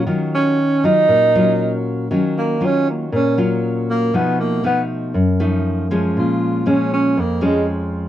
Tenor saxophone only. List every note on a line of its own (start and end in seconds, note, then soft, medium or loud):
0.35 0.86 C#4 medium
0.85 1.86 D#4 loud
2.38 2.67 A#3 medium
2.65 2.88 C#4 medium
2.90 3.06 A#3 soft
3.15 3.39 C#4 medium
3.91 4.17 A#3 medium
4.16 4.39 B3 medium
4.40 4.63 A#3 medium
4.66 4.81 B3 medium
6.18 6.70 F4 medium
6.68 6.93 C#4 medium
6.93 7.21 C#4 medium
7.20 7.44 A#3 medium
7.45 7.67 G#3 medium